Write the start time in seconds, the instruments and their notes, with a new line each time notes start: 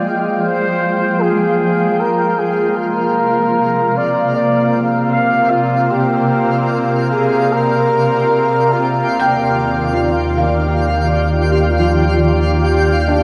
Already playing: ambient pad F3 G#3 F5 G5, synth drone A#3 F4, synth texture F4 G5, flugelhorn D5
0.42 flugelhorn C5
1.21 flugelhorn G#4
2.00 flugelhorn A#4
2.39 flugelhorn G#4
2.77 ambient pad C3, flugelhorn A#4
2.91 ambient pad C4
3.03 ambient pad A#4
3.08 ambient pad D5
3.97 flugelhorn D5
4.35 flugelhorn D5
5.12 flugelhorn F5
5.51 flugelhorn F4
5.91 flugelhorn G4
7.12 flugelhorn G#4
7.53 flugelhorn A#4
8.72 flugelhorn F4
9.08 sub bass D#2, ambient pad D#3
9.20 felt piano G5
9.86 ambient pad G4
9.93 felt piano F4
10.38 felt piano F5
11.52 felt piano G4
11.79 felt piano F3
13.08 felt piano D4